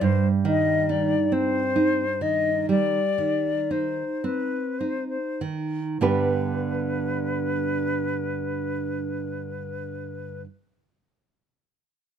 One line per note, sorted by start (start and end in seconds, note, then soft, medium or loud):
0.01 2.64 G2 soft
0.01 0.28 C5 medium
0.45 1.15 D#3 soft
0.45 0.92 D#5 medium
0.89 1.59 D#4 soft
0.89 1.34 D5 soft
1.32 2.04 C4 soft
1.32 2.23 C5 medium
1.76 2.50 D#4 soft
2.21 2.98 D#3 soft
2.21 2.69 D#5 medium
2.69 3.50 G3 soft
2.69 3.72 D5 soft
3.18 4.03 D#3 soft
3.71 4.58 D#4 soft
3.71 4.26 C5 soft
4.24 5.16 C4 soft
4.24 4.81 B4 soft
4.79 5.79 D#4 soft
4.79 5.08 C5 soft
5.09 5.41 C5 soft
5.41 6.00 D#3 soft
5.99 10.44 G2 soft
5.99 10.43 D3 soft
5.99 10.44 B3 soft
5.99 10.44 D4 soft
5.99 10.45 G4 soft
5.99 10.42 B4 soft
5.99 10.45 B4 soft